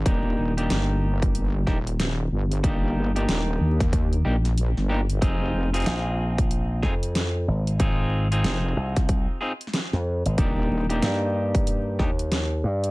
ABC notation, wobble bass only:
X:1
M:4/4
L:1/16
Q:"Swing 16ths" 1/4=93
K:Eb
V:1 name="Wobble bass" clef=bass
E,,,2 E,,,2 G,,,6 E,,,4 G,,,2- | G,,,4 E,,,2 E,,4 B,,,3 G,,,3 | F,,,2 F,,,2 z12 | z4 F,,,2 z8 z2 |
E,,,2 E,,,2 z12 |]